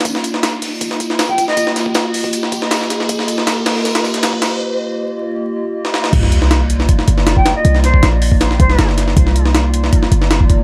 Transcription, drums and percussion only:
0.01 snare, closed hi-hat
0.05 kick, closed hi-hat, tambourine
0.15 snare
0.24 closed hi-hat, tambourine
0.34 snare
0.43 snare, closed hi-hat, tambourine
0.62 snare, closed hi-hat, open hi-hat
0.81 kick, closed hi-hat, tambourine
0.91 snare, closed hi-hat
1.00 closed hi-hat, tambourine
1.10 snare
1.19 snare, closed hi-hat, tambourine
1.29 kick
1.38 kick, closed hi-hat, tambourine
1.48 snare
1.57 kick, closed hi-hat, tambourine
1.67 snare
1.76 snare, closed hi-hat, tambourine
1.86 kick
1.94 snare, closed hi-hat, tambourine
2.14 open hi-hat, tambourine
2.24 kick, closed hi-hat
2.33 closed hi-hat, tambourine
2.43 snare
2.52 kick, closed hi-hat, tambourine
2.62 snare
2.71 snare, closed hi-hat, tambourine
2.81 snare
2.90 snare, closed hi-hat, tambourine
3.00 snare
3.09 kick, closed hi-hat, tambourine
3.19 snare
3.28 closed hi-hat, tambourine
3.38 snare
3.47 snare, closed hi-hat, tambourine
3.66 snare, closed hi-hat, open hi-hat
3.76 snare
3.85 snare, closed hi-hat, tambourine
3.95 snare, closed hi-hat
4.04 snare, tambourine
4.14 snare, closed hi-hat
4.23 snare, closed hi-hat, tambourine
4.33 kick
4.42 snare, closed hi-hat, tambourine
5.85 snare
5.94 snare
6.04 snare
6.13 kick, closed hi-hat, crash
6.23 snare
6.32 closed hi-hat
6.42 snare
6.51 snare, closed hi-hat
6.70 closed hi-hat
6.80 snare
6.89 kick, closed hi-hat
6.99 snare
7.08 closed hi-hat
7.18 snare
7.27 snare, closed hi-hat
7.37 kick
7.46 snare, closed hi-hat
7.65 closed hi-hat
7.75 snare
7.84 snare, closed hi-hat
7.94 kick
8.03 snare, closed hi-hat
8.22 open hi-hat
8.32 kick
8.41 snare, closed hi-hat
8.51 snare
8.60 kick, closed hi-hat
8.70 snare
8.79 snare, closed hi-hat
8.89 snare
8.98 snare, closed hi-hat
9.08 snare
9.17 kick, closed hi-hat
9.27 snare
9.36 closed hi-hat
9.46 snare
9.55 snare, closed hi-hat
9.74 closed hi-hat
9.84 snare
9.93 kick, closed hi-hat
10.03 snare
10.12 closed hi-hat
10.22 snare
10.31 snare, closed hi-hat
10.41 kick
10.50 kick, closed hi-hat

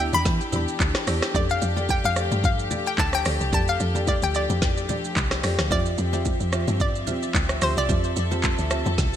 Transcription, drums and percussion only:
0.13 low bongo, shaker
0.25 kick, snare, low conga, shaker
0.41 shaker
0.53 high bongo, low bongo, low conga, shaker
0.68 shaker
0.80 kick, clap, high bongo, shaker
0.95 cross-stick, snare, shaker
1.07 cross-stick, open hi-hat, shaker
1.22 cross-stick, snare, shaker
1.34 kick, low conga, shaker
1.49 shaker
1.62 low bongo, shaker
1.77 low bongo, shaker
1.89 kick, high bongo, shaker
2.04 shaker
2.16 cross-stick, shaker
2.31 low bongo, shaker
2.44 kick, low conga, shaker
2.59 shaker
2.71 high bongo, low bongo, low conga, shaker
2.86 shaker
2.98 kick, clap, high bongo, shaker
3.13 cross-stick, shaker
3.25 cross-stick, open hi-hat, shaker
3.41 shaker
3.53 kick, low conga, shaker
3.68 shaker
3.80 low bongo, shaker
3.95 low bongo, shaker
4.07 kick, high bongo, shaker
4.22 shaker
4.34 shaker
4.50 low bongo, shaker
4.62 kick, snare, low conga, shaker
4.77 shaker
4.89 high bongo, low bongo, low conga, shaker
5.04 shaker
5.16 kick, clap, high bongo, shaker
5.31 cross-stick, snare, shaker
5.43 cross-stick, open hi-hat, shaker
5.59 cross-stick, snare, shaker
5.71 kick, low conga, shaker
5.86 shaker
5.98 low bongo, shaker
6.13 low bongo, shaker
6.25 kick, high bongo, shaker
6.40 shaker
6.52 cross-stick, shaker
6.68 low bongo, shaker
6.80 kick, low conga, shaker
6.95 shaker
7.07 high bongo, low bongo, low conga, shaker
7.23 shaker
7.34 kick, clap, high bongo, shaker
7.49 cross-stick, shaker
7.62 cross-stick, open hi-hat, shaker
7.77 shaker
7.89 kick, low conga, shaker
8.04 shaker
8.16 low bongo, shaker
8.31 high bongo, low bongo, shaker
8.43 kick, clap, high bongo, shaker
8.58 shaker
8.71 cross-stick, shaker
8.86 low bongo, shaker
8.98 kick, snare, low conga, shaker

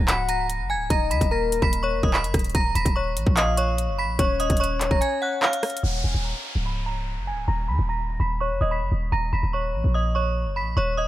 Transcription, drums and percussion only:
0.08 clap, closed hi-hat
0.29 closed hi-hat
0.50 closed hi-hat
0.90 kick, closed hi-hat
1.11 closed hi-hat
1.21 kick, closed hi-hat
1.52 closed hi-hat
1.62 kick
1.73 closed hi-hat
2.03 kick
2.14 clap
2.24 closed hi-hat
2.34 kick, cross-stick, closed hi-hat
2.39 closed hi-hat
2.44 closed hi-hat
2.50 closed hi-hat
2.55 kick, closed hi-hat
2.75 closed hi-hat
2.85 kick, closed hi-hat
3.17 closed hi-hat
3.27 kick
3.37 clap, closed hi-hat
3.57 closed hi-hat
3.78 closed hi-hat
4.19 kick, closed hi-hat
4.40 closed hi-hat
4.50 kick, closed hi-hat
4.57 closed hi-hat
4.64 closed hi-hat
4.81 clap, closed hi-hat
4.91 kick
5.02 closed hi-hat
5.42 clap
5.53 closed hi-hat
5.63 cross-stick, closed hi-hat, open hi-hat
5.70 closed hi-hat
5.77 closed hi-hat

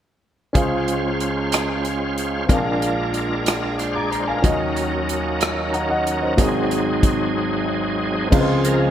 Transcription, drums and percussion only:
0.55 kick, closed hi-hat
0.88 closed hi-hat
1.20 closed hi-hat
1.52 cross-stick, closed hi-hat
1.85 closed hi-hat
2.18 closed hi-hat
2.49 kick, closed hi-hat
2.82 closed hi-hat
3.14 closed hi-hat
3.46 cross-stick, closed hi-hat
3.79 cross-stick, closed hi-hat
4.12 closed hi-hat
4.44 kick, closed hi-hat
4.76 closed hi-hat
5.09 closed hi-hat
5.41 cross-stick, closed hi-hat
5.74 closed hi-hat
6.07 closed hi-hat
6.38 kick, closed hi-hat
6.71 closed hi-hat
7.03 kick, closed hi-hat
8.32 kick, crash
8.65 closed hi-hat

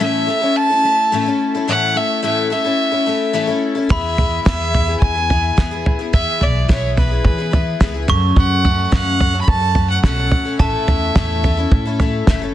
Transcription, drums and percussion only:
3.90 kick, floor tom
4.18 floor tom
4.46 kick, snare, floor tom
4.75 floor tom
5.02 kick, floor tom
5.30 floor tom
5.58 kick, snare, floor tom
5.86 floor tom
6.14 kick, floor tom
6.41 floor tom
6.69 kick, snare, floor tom
6.97 floor tom
7.25 kick, floor tom
7.53 floor tom
7.81 kick, snare, floor tom
8.08 floor tom
8.36 kick, floor tom
8.65 floor tom
8.92 kick, snare, floor tom
9.21 floor tom
9.48 kick, floor tom
9.75 floor tom
10.04 kick, snare, floor tom
10.32 floor tom
10.59 kick, floor tom
10.88 floor tom
11.16 kick, snare, floor tom
11.44 floor tom
11.72 kick, floor tom
12.00 floor tom
12.27 kick, snare, floor tom

